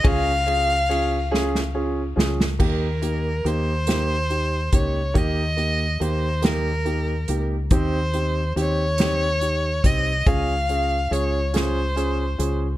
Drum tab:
CC |------------|x-----------|------------|------------|
RD |x-x-x-------|------------|------------|------------|
HH |------------|--x-x-x-x-x-|x-x-x-x-x-x-|x-x-x-x-x-x-|
SD |------oo--oo|------o-----|------o-----|------o-----|
BD |o-----------|o---------o-|o-----------|o---------o-|

CC |------------|
RD |------------|
HH |x-x-x-x-x-x-|
SD |------o-----|
BD |o-----------|